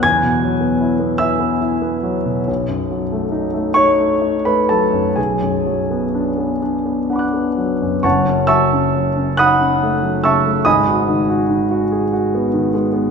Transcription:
<<
  \new Staff \with { instrumentName = "Grand piano" } { \time 6/8 \key fis \dorian \tempo 4. = 47 <gis'' gis'''>4. <e'' e'''>8 r4 | r4. <cis'' cis'''>8. <b' b''>16 <a' a''>8 | <gis' gis''>4. r8 <fis'' b'' d''' fis'''>4 | <cis'' fis'' a'' cis'''>8 <e'' a'' cis''' e'''>4 <fis'' b'' dis''' fis'''>4 <e'' a'' cis''' e'''>8 |
<dis'' gis'' b'' dis'''>2~ <dis'' gis'' b'' dis'''>8 r8 | }
  \new Staff \with { instrumentName = "Grand piano" } { \time 6/8 \key fis \dorian e,16 b,16 fis16 b16 e'16 b16 e'16 b16 e'16 b16 fis16 b,16 | b,,16 fis,16 fis16 a16 dis'16 a16 dis'16 a16 dis'16 a16 fis16 fis,16 | b,,16 fis,16 fis16 b16 d'16 b16 d'16 b16 d'16 b16 fis16 fis,16 | <fis,, fis,>16 cis'16 fis16 cis'16 fis16 cis'16 dis'16 cis'16 a16 fis16 cis16 a16 |
<gis,, gis,>16 fis'16 dis16 fis'16 dis16 fis'16 gis'16 fis'16 b16 dis16 gis16 b16 | }
>>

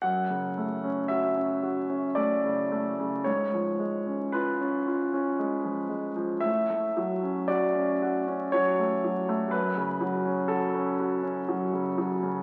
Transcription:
<<
  \new Staff \with { instrumentName = "Grand piano" } { \time 3/4 \key fis \minor \tempo 4 = 57 fis''4 e''4 d''4 | cis''4 b'4. r8 | e''4 d''4 cis''4 | b'4 a'4. r8 | }
  \new Staff \with { instrumentName = "Grand piano" } { \time 3/4 \key fis \minor fis,16 cis16 a16 cis'16 fis'16 cis'16 fis'16 cis'16 a16 cis16 a16 cis16 | gis,16 eis16 gis16 cis'16 eis'16 cis'16 eis'16 cis'16 gis16 eis16 gis16 eis16 | a,16 a16 fis16 cis'16 fis'16 cis'16 fis'16 cis'16 fis16 a16 fis16 a16 | fis,16 cis16 fis16 cis'16 fis'16 cis'16 fis'16 cis'16 fis16 cis16 fis16 cis16 | }
>>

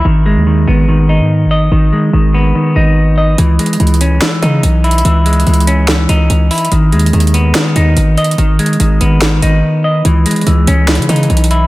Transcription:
<<
  \new Staff \with { instrumentName = "Clean electric guitar" } { \clef bass \time 4/4 \key cis \minor \tempo 4 = 144 dis8 gis8 dis8 b8 dis8 dis'4 dis''8 | dis8 gis8 dis8 b8 dis8 dis'4 dis''8 | e8 gis8 e8 cis'8 e8 dis'4 e'8 | e8 gis8 e8 cis'8 e8 dis'4 e'8 |
dis8 gis8 dis8 b8 dis8 dis'4 dis''8 | dis8 gis8 dis8 b8 dis8 dis'4 dis''8 | e8 gis8 e8 cis'8 e8 dis'4 e'8 | }
  \new Staff \with { instrumentName = "808-style bass" } { \clef bass \time 4/4 \key cis \minor gis,,8. dis,8. gis,,4~ gis,,16 gis,8~ gis,32 gis,,8~ gis,,32 | gis,,8 r8 gis,,4 r8 gis,,4. | cis,8 r8 cis,4 r8 cis8 b,,4 | cis,4 cis,4. cis,8 cis,8 r8 |
gis,,8 dis,8 dis,4 r8 dis,8 gis,,8 r8 | gis,,8 r8 gis,,8 gis,,4 gis,,8 r4 | cis,8 r8 cis,8 cis,8. cis16 cis8 b,,4 | }
  \new DrumStaff \with { instrumentName = "Drums" } \drummode { \time 4/4 r4 r4 r4 r4 | r4 r4 r4 r4 | \tuplet 3/2 { hh16 r16 r16 hh16 hh16 hh16 hh16 hh16 hh16 hh16 r16 r16 } <hh sn>8 hh8 \tuplet 3/2 { hh16 r16 r16 hh16 hh16 hh16 } | \tuplet 3/2 { hh16 r16 r16 hh16 hh16 hh16 hh16 hh16 hh16 hh16 r16 r16 } <hh sn>8 hh8 \tuplet 3/2 { hh16 r16 r16 <hh hho>16 hh16 hh16 } |
\tuplet 3/2 { hh16 r16 r16 hh16 hh16 hh16 hh16 hh16 hh16 hh16 r16 r16 } <hh sn>8 hh8 \tuplet 3/2 { hh16 r16 r16 hh16 hh16 hh16 } | \tuplet 3/2 { hh16 r16 r16 hh16 hh16 hh16 } hh8 hh8 <hh sn>8 hh8 r4 | hh8 hh32 hh32 hh32 hh32 hh8 hh8 \tuplet 3/2 { <hh sn>16 hh16 hh16 hh16 hh16 hh16 hh16 hh16 hh16 hh16 r16 r16 } | }
>>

